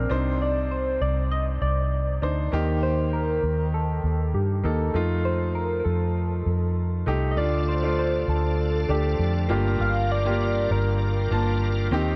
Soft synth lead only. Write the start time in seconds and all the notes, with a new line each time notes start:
0.42 D5
0.71 C5
1.02 D5
1.32 D#5
1.62 D5
2.83 C5
3.13 A#4
3.74 A4
4.34 G4
5.25 C5
5.55 A#4
5.80 A#4
5.85 A4
7.31 D#5
7.38 D5
7.68 C5
7.99 C5
8.29 A4
9.81 F5
10.12 D5
10.42 D5
10.72 A#4